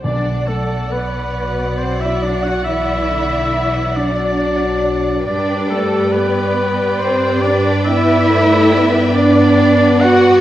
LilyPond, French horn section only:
\new Staff \with { instrumentName = "French horn section" } { \clef bass \time 6/8 \key b \phrygian \tempo 4. = 46 r4. fis4. | e8 d8 e8 fis4. | g4. g4. | b8 a8 b2 | }